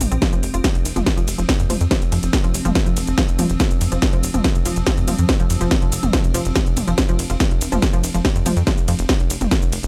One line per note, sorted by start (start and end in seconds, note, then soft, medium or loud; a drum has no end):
0.00 0.08 A#1 loud
0.00 0.63 F3 medium
0.00 0.63 C4 medium
0.00 open hi-hat loud
0.00 mid tom medium
0.00 shaker medium
0.12 0.18 A#1 medium
0.12 0.18 C4 medium
0.12 closed hi-hat medium
0.12 shaker soft
0.22 0.26 F3 medium
0.22 kick loud
0.22 snare loud
0.22 closed hi-hat medium
0.22 shaker soft
0.33 0.39 F1 medium
0.33 0.37 F3 medium
0.33 closed hi-hat medium
0.33 shaker soft
0.43 0.50 F1 loud
0.43 open hi-hat loud
0.43 shaker medium
0.54 0.60 F1 medium
0.54 0.58 F4 medium
0.54 closed hi-hat medium
0.54 shaker soft
0.64 0.68 F3 medium
0.64 9.87 F3 medium
0.64 9.87 C4 medium
0.64 kick loud
0.64 snare loud
0.64 closed hi-hat medium
0.64 shaker soft
0.75 0.82 F1 medium
0.75 closed hi-hat medium
0.85 0.92 F1 loud
0.85 open hi-hat loud
0.85 ride medium
0.85 shaker medium
0.96 1.03 F1 medium
0.96 1.02 F3 loud
0.96 closed hi-hat medium
0.96 mid tom medium
0.96 shaker soft
1.06 kick loud
1.06 snare loud
1.06 closed hi-hat medium
1.06 shaker soft
1.17 1.24 F1 medium
1.17 1.23 F3 loud
1.17 closed hi-hat medium
1.17 shaker soft
1.28 1.34 F1 loud
1.28 open hi-hat loud
1.28 ride medium
1.28 shaker medium
1.38 1.45 F1 loud
1.38 1.42 F3 medium
1.38 closed hi-hat medium
1.38 shaker soft
1.49 kick loud
1.49 snare loud
1.49 closed hi-hat medium
1.49 shaker soft
1.60 1.66 F2 medium
1.60 closed hi-hat medium
1.60 shaker soft
1.70 1.77 F1 loud
1.70 1.76 F3 loud
1.70 open hi-hat loud
1.70 mid tom medium
1.70 ride medium
1.70 shaker medium
1.81 1.87 F2 medium
1.81 closed hi-hat medium
1.81 shaker soft
1.91 1.97 F3 loud
1.91 kick loud
1.91 snare loud
1.91 closed hi-hat medium
1.91 shaker soft
2.02 2.08 F1 medium
2.02 closed hi-hat medium
2.02 shaker soft
2.12 2.19 F2 loud
2.12 2.16 F3 medium
2.12 open hi-hat loud
2.12 ride medium
2.12 shaker medium
2.23 2.29 F1 loud
2.23 closed hi-hat medium
2.23 shaker soft
2.33 kick loud
2.33 snare loud
2.33 closed hi-hat medium
2.33 shaker soft
2.44 2.51 F1 medium
2.44 2.50 F3 loud
2.44 closed hi-hat medium
2.54 2.61 F1 loud
2.54 open hi-hat loud
2.54 ride medium
2.54 shaker medium
2.65 2.72 F1 loud
2.65 2.71 F3 loud
2.65 closed hi-hat medium
2.65 mid tom medium
2.65 shaker soft
2.75 kick loud
2.75 snare loud
2.75 closed hi-hat medium
2.75 shaker soft
2.86 2.93 F1 medium
2.86 2.90 F3 medium
2.86 closed hi-hat medium
2.86 shaker soft
2.97 3.04 F1 loud
2.97 open hi-hat loud
2.97 ride medium
2.97 shaker medium
3.07 3.14 F1 medium
3.07 closed hi-hat medium
3.07 shaker soft
3.18 3.24 F3 loud
3.18 kick loud
3.18 snare loud
3.18 closed hi-hat medium
3.18 shaker soft
3.28 3.35 F1 medium
3.28 closed hi-hat medium
3.28 shaker soft
3.39 3.46 F1 loud
3.39 3.45 F3 loud
3.39 open hi-hat loud
3.39 mid tom medium
3.39 ride medium
3.39 shaker medium
3.50 3.56 F1 medium
3.50 closed hi-hat medium
3.50 shaker soft
3.60 3.64 F3 medium
3.60 kick loud
3.60 snare loud
3.60 closed hi-hat medium
3.60 shaker soft
3.71 3.77 F1 medium
3.71 closed hi-hat medium
3.71 shaker soft
3.81 3.88 F2 loud
3.81 open hi-hat loud
3.81 ride medium
3.81 shaker medium
3.92 3.98 F1 medium
3.92 3.98 F3 loud
3.92 closed hi-hat medium
3.92 shaker soft
4.02 kick loud
4.02 snare loud
4.02 closed hi-hat medium
4.02 shaker soft
4.13 4.20 F1 medium
4.13 4.19 F3 loud
4.13 closed hi-hat medium
4.23 4.30 F1 loud
4.23 open hi-hat loud
4.23 ride medium
4.23 shaker medium
4.34 4.41 F1 medium
4.34 4.38 F3 medium
4.34 closed hi-hat medium
4.34 mid tom medium
4.34 shaker soft
4.44 kick loud
4.44 snare loud
4.44 closed hi-hat medium
4.44 shaker soft
4.55 4.62 F1 medium
4.55 closed hi-hat medium
4.55 shaker soft
4.65 4.72 F1 loud
4.65 4.72 F3 loud
4.65 open hi-hat loud
4.65 ride medium
4.65 shaker medium
4.76 4.83 F1 loud
4.76 closed hi-hat medium
4.76 shaker soft
4.87 4.93 F3 loud
4.87 kick loud
4.87 snare loud
4.87 closed hi-hat medium
4.87 shaker soft
4.97 5.04 F2 medium
4.97 closed hi-hat medium
4.97 shaker soft
5.08 5.15 F1 loud
5.08 5.12 F3 medium
5.08 open hi-hat loud
5.08 mid tom medium
5.08 ride medium
5.08 shaker medium
5.19 5.25 F2 medium
5.19 closed hi-hat medium
5.19 shaker soft
5.29 kick loud
5.29 snare loud
5.29 closed hi-hat medium
5.29 shaker soft
5.40 5.46 F1 medium
5.40 5.46 F3 loud
5.40 closed hi-hat medium
5.40 shaker soft
5.50 5.57 F2 loud
5.50 open hi-hat loud
5.50 ride medium
5.50 shaker medium
5.61 5.67 F1 medium
5.61 5.67 F3 loud
5.61 closed hi-hat medium
5.61 shaker soft
5.71 kick loud
5.71 snare loud
5.71 closed hi-hat medium
5.71 shaker soft
5.82 5.89 F1 medium
5.82 5.86 F3 medium
5.82 closed hi-hat medium
5.92 5.99 F1 loud
5.92 open hi-hat loud
5.92 ride medium
5.92 shaker medium
6.03 6.10 F1 medium
6.03 closed hi-hat medium
6.03 mid tom medium
6.03 shaker soft
6.13 6.20 F3 loud
6.13 kick loud
6.13 snare loud
6.13 closed hi-hat medium
6.13 shaker soft
6.24 6.31 F1 medium
6.24 closed hi-hat medium
6.24 shaker soft
6.34 6.41 F1 loud
6.34 6.41 F3 loud
6.34 open hi-hat loud
6.34 ride medium
6.34 shaker medium
6.45 6.52 F1 loud
6.45 closed hi-hat medium
6.45 shaker soft
6.56 6.60 F3 medium
6.56 kick loud
6.56 snare loud
6.56 closed hi-hat medium
6.56 shaker soft
6.66 6.73 F1 medium
6.66 closed hi-hat medium
6.66 shaker soft
6.77 6.84 F1 loud
6.77 open hi-hat loud
6.77 mid tom medium
6.77 ride medium
6.77 shaker medium
6.88 6.94 F1 medium
6.88 6.94 F3 loud
6.88 closed hi-hat medium
6.88 shaker soft
6.98 kick loud
6.98 snare loud
6.98 closed hi-hat medium
6.98 shaker soft
7.09 7.15 F1 medium
7.09 7.15 F3 loud
7.09 closed hi-hat medium
7.09 shaker soft
7.19 7.26 F1 loud
7.19 open hi-hat loud
7.19 ride medium
7.19 shaker medium
7.30 7.36 F1 medium
7.30 7.34 F3 medium
7.30 closed hi-hat medium
7.30 shaker soft
7.40 7.44 F3 medium
7.40 kick loud
7.40 snare loud
7.40 closed hi-hat medium
7.40 shaker soft
7.51 7.58 F1 medium
7.51 closed hi-hat medium
7.61 7.68 F1 loud
7.61 open hi-hat loud
7.61 ride medium
7.61 shaker medium
7.72 7.79 F1 medium
7.72 7.78 F3 loud
7.72 closed hi-hat medium
7.72 mid tom medium
7.72 shaker soft
7.82 kick loud
7.82 snare loud
7.82 closed hi-hat medium
7.82 shaker soft
7.93 8.00 F1 medium
7.93 7.99 F3 loud
7.93 closed hi-hat medium
7.93 shaker soft
8.04 8.10 F1 loud
8.04 open hi-hat loud
8.04 ride medium
8.04 shaker medium
8.14 8.21 F1 loud
8.14 8.18 F3 medium
8.14 closed hi-hat soft
8.14 shaker soft
8.25 kick loud
8.25 snare loud
8.25 closed hi-hat medium
8.25 shaker soft
8.36 8.42 F2 medium
8.36 closed hi-hat medium
8.36 shaker soft
8.46 8.53 F1 loud
8.46 8.52 F3 loud
8.46 open hi-hat loud
8.46 mid tom medium
8.46 ride medium
8.46 shaker medium
8.57 8.63 F2 medium
8.57 closed hi-hat soft
8.57 shaker soft
8.67 8.73 F3 loud
8.67 kick loud
8.67 snare loud
8.67 closed hi-hat medium
8.67 shaker soft
8.78 8.84 F1 medium
8.78 closed hi-hat medium
8.78 shaker soft
8.88 8.95 F2 loud
8.88 8.92 F3 medium
8.88 open hi-hat loud
8.88 ride medium
8.88 shaker medium
8.99 9.05 F1 medium
8.99 closed hi-hat medium
8.99 shaker soft
9.09 kick loud
9.09 snare loud
9.09 closed hi-hat medium
9.09 shaker soft
9.20 9.27 F1 medium
9.20 closed hi-hat medium
9.30 9.37 F1 loud
9.30 open hi-hat loud
9.30 ride medium
9.30 shaker medium
9.41 9.48 F1 loud
9.41 closed hi-hat soft
9.41 mid tom medium
9.41 shaker soft
9.51 kick loud
9.51 snare loud
9.51 closed hi-hat medium
9.51 shaker soft
9.62 9.69 F1 medium
9.62 closed hi-hat medium
9.62 shaker soft
9.72 9.79 F1 loud
9.72 open hi-hat loud
9.72 ride medium
9.72 shaker medium
9.83 9.87 F1 loud
9.83 closed hi-hat soft
9.83 shaker soft